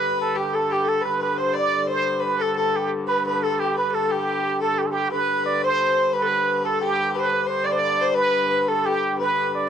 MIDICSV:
0, 0, Header, 1, 4, 480
1, 0, Start_track
1, 0, Key_signature, 1, "major"
1, 0, Tempo, 338792
1, 50, Time_signature, 6, 3, 24, 8
1, 13732, End_track
2, 0, Start_track
2, 0, Title_t, "Fiddle"
2, 0, Program_c, 0, 110
2, 0, Note_on_c, 0, 71, 82
2, 499, Note_on_c, 0, 67, 69
2, 520, Note_off_c, 0, 71, 0
2, 749, Note_on_c, 0, 69, 66
2, 770, Note_off_c, 0, 67, 0
2, 989, Note_on_c, 0, 67, 61
2, 1011, Note_off_c, 0, 69, 0
2, 1027, Note_on_c, 0, 69, 53
2, 1048, Note_off_c, 0, 67, 0
2, 1071, Note_on_c, 0, 67, 67
2, 1092, Note_off_c, 0, 69, 0
2, 1152, Note_off_c, 0, 67, 0
2, 1160, Note_on_c, 0, 69, 62
2, 1435, Note_on_c, 0, 71, 65
2, 1456, Note_off_c, 0, 69, 0
2, 1675, Note_off_c, 0, 71, 0
2, 1683, Note_on_c, 0, 71, 63
2, 1949, Note_on_c, 0, 72, 70
2, 1970, Note_off_c, 0, 71, 0
2, 2172, Note_on_c, 0, 74, 68
2, 2193, Note_off_c, 0, 72, 0
2, 2541, Note_off_c, 0, 74, 0
2, 2541, Note_on_c, 0, 74, 55
2, 2643, Note_on_c, 0, 72, 76
2, 2664, Note_off_c, 0, 74, 0
2, 3116, Note_on_c, 0, 71, 66
2, 3137, Note_off_c, 0, 72, 0
2, 3372, Note_off_c, 0, 71, 0
2, 3380, Note_on_c, 0, 69, 70
2, 3618, Note_off_c, 0, 69, 0
2, 3628, Note_on_c, 0, 69, 69
2, 4085, Note_off_c, 0, 69, 0
2, 4359, Note_on_c, 0, 71, 75
2, 4588, Note_off_c, 0, 71, 0
2, 4631, Note_on_c, 0, 71, 69
2, 4845, Note_off_c, 0, 71, 0
2, 4859, Note_on_c, 0, 69, 69
2, 5078, Note_off_c, 0, 69, 0
2, 5099, Note_on_c, 0, 67, 61
2, 5306, Note_off_c, 0, 67, 0
2, 5315, Note_on_c, 0, 71, 63
2, 5537, Note_off_c, 0, 71, 0
2, 5546, Note_on_c, 0, 69, 71
2, 5812, Note_on_c, 0, 67, 64
2, 5833, Note_off_c, 0, 69, 0
2, 6509, Note_off_c, 0, 67, 0
2, 6518, Note_on_c, 0, 69, 62
2, 6839, Note_off_c, 0, 69, 0
2, 6975, Note_on_c, 0, 67, 61
2, 7234, Note_off_c, 0, 67, 0
2, 7246, Note_on_c, 0, 71, 77
2, 7995, Note_on_c, 0, 72, 78
2, 8016, Note_off_c, 0, 71, 0
2, 8690, Note_on_c, 0, 71, 70
2, 8711, Note_off_c, 0, 72, 0
2, 8813, Note_on_c, 0, 69, 66
2, 8834, Note_off_c, 0, 71, 0
2, 8894, Note_on_c, 0, 71, 76
2, 8915, Note_off_c, 0, 69, 0
2, 9422, Note_on_c, 0, 69, 79
2, 9443, Note_off_c, 0, 71, 0
2, 9662, Note_on_c, 0, 67, 81
2, 9684, Note_off_c, 0, 69, 0
2, 10127, Note_on_c, 0, 71, 82
2, 10148, Note_off_c, 0, 67, 0
2, 10194, Note_on_c, 0, 72, 68
2, 10215, Note_off_c, 0, 71, 0
2, 10243, Note_on_c, 0, 71, 76
2, 10265, Note_off_c, 0, 72, 0
2, 10346, Note_off_c, 0, 71, 0
2, 10354, Note_on_c, 0, 71, 69
2, 10580, Note_on_c, 0, 72, 80
2, 10601, Note_off_c, 0, 71, 0
2, 10818, Note_on_c, 0, 74, 75
2, 10839, Note_off_c, 0, 72, 0
2, 10932, Note_on_c, 0, 72, 67
2, 10953, Note_off_c, 0, 74, 0
2, 11038, Note_on_c, 0, 74, 89
2, 11059, Note_off_c, 0, 72, 0
2, 11324, Note_off_c, 0, 74, 0
2, 11341, Note_on_c, 0, 72, 74
2, 11542, Note_on_c, 0, 71, 82
2, 11564, Note_off_c, 0, 72, 0
2, 12022, Note_off_c, 0, 71, 0
2, 12031, Note_on_c, 0, 71, 68
2, 12300, Note_on_c, 0, 69, 71
2, 12321, Note_off_c, 0, 71, 0
2, 12556, Note_on_c, 0, 67, 79
2, 12577, Note_off_c, 0, 69, 0
2, 13001, Note_off_c, 0, 67, 0
2, 13009, Note_on_c, 0, 71, 70
2, 13678, Note_off_c, 0, 71, 0
2, 13732, End_track
3, 0, Start_track
3, 0, Title_t, "Muted trumpet"
3, 0, Program_c, 1, 59
3, 0, Note_on_c, 1, 71, 95
3, 266, Note_off_c, 1, 71, 0
3, 300, Note_on_c, 1, 69, 85
3, 519, Note_off_c, 1, 69, 0
3, 553, Note_on_c, 1, 67, 76
3, 781, Note_on_c, 1, 69, 83
3, 802, Note_off_c, 1, 67, 0
3, 1032, Note_on_c, 1, 67, 83
3, 1053, Note_off_c, 1, 69, 0
3, 1251, Note_on_c, 1, 69, 76
3, 1272, Note_off_c, 1, 67, 0
3, 1483, Note_off_c, 1, 69, 0
3, 1491, Note_on_c, 1, 71, 87
3, 1714, Note_off_c, 1, 71, 0
3, 1745, Note_on_c, 1, 71, 82
3, 1952, Note_off_c, 1, 71, 0
3, 1960, Note_on_c, 1, 72, 79
3, 2188, Note_off_c, 1, 72, 0
3, 2229, Note_on_c, 1, 74, 98
3, 2667, Note_off_c, 1, 74, 0
3, 2694, Note_on_c, 1, 72, 90
3, 3139, Note_off_c, 1, 72, 0
3, 3187, Note_on_c, 1, 71, 83
3, 3425, Note_on_c, 1, 69, 75
3, 3446, Note_off_c, 1, 71, 0
3, 3658, Note_off_c, 1, 69, 0
3, 3673, Note_on_c, 1, 69, 85
3, 3910, Note_on_c, 1, 67, 76
3, 3931, Note_off_c, 1, 69, 0
3, 4140, Note_off_c, 1, 67, 0
3, 4368, Note_on_c, 1, 71, 94
3, 4592, Note_off_c, 1, 71, 0
3, 4619, Note_on_c, 1, 71, 77
3, 4865, Note_on_c, 1, 69, 75
3, 4886, Note_off_c, 1, 71, 0
3, 5096, Note_on_c, 1, 67, 85
3, 5117, Note_off_c, 1, 69, 0
3, 5333, Note_off_c, 1, 67, 0
3, 5354, Note_on_c, 1, 71, 86
3, 5592, Note_on_c, 1, 69, 74
3, 5613, Note_off_c, 1, 71, 0
3, 5830, Note_on_c, 1, 67, 71
3, 5852, Note_off_c, 1, 69, 0
3, 6540, Note_off_c, 1, 67, 0
3, 6550, Note_on_c, 1, 69, 96
3, 6777, Note_on_c, 1, 67, 88
3, 6798, Note_off_c, 1, 69, 0
3, 6890, Note_on_c, 1, 69, 74
3, 6911, Note_off_c, 1, 67, 0
3, 6961, Note_on_c, 1, 67, 86
3, 6982, Note_off_c, 1, 69, 0
3, 7248, Note_on_c, 1, 71, 91
3, 7269, Note_off_c, 1, 67, 0
3, 7720, Note_off_c, 1, 71, 0
3, 7729, Note_on_c, 1, 74, 81
3, 7952, Note_off_c, 1, 74, 0
3, 7988, Note_on_c, 1, 72, 94
3, 8649, Note_off_c, 1, 72, 0
3, 8696, Note_on_c, 1, 71, 94
3, 9363, Note_off_c, 1, 71, 0
3, 9415, Note_on_c, 1, 69, 90
3, 9636, Note_off_c, 1, 69, 0
3, 9651, Note_on_c, 1, 67, 100
3, 10142, Note_on_c, 1, 71, 93
3, 10164, Note_off_c, 1, 67, 0
3, 10607, Note_off_c, 1, 71, 0
3, 10616, Note_on_c, 1, 72, 84
3, 10859, Note_on_c, 1, 74, 98
3, 10880, Note_off_c, 1, 72, 0
3, 11554, Note_off_c, 1, 74, 0
3, 11563, Note_on_c, 1, 71, 103
3, 12301, Note_on_c, 1, 69, 89
3, 12323, Note_off_c, 1, 71, 0
3, 12547, Note_on_c, 1, 67, 90
3, 12569, Note_off_c, 1, 69, 0
3, 13018, Note_off_c, 1, 67, 0
3, 13037, Note_on_c, 1, 71, 88
3, 13470, Note_off_c, 1, 71, 0
3, 13527, Note_on_c, 1, 74, 78
3, 13732, Note_off_c, 1, 74, 0
3, 13732, End_track
4, 0, Start_track
4, 0, Title_t, "Hurdy-gurdy"
4, 0, Program_c, 2, 110
4, 0, Note_on_c, 2, 43, 67
4, 0, Note_on_c, 2, 50, 59
4, 1478, Note_off_c, 2, 43, 0
4, 1478, Note_on_c, 2, 43, 60
4, 1483, Note_off_c, 2, 50, 0
4, 1483, Note_on_c, 2, 50, 61
4, 7250, Note_off_c, 2, 50, 0
4, 7250, Note_on_c, 2, 50, 58
4, 7253, Note_off_c, 2, 43, 0
4, 7253, Note_on_c, 2, 43, 61
4, 13021, Note_off_c, 2, 50, 0
4, 13021, Note_on_c, 2, 50, 63
4, 13024, Note_off_c, 2, 43, 0
4, 13024, Note_on_c, 2, 43, 62
4, 13732, Note_off_c, 2, 43, 0
4, 13732, Note_off_c, 2, 50, 0
4, 13732, End_track
0, 0, End_of_file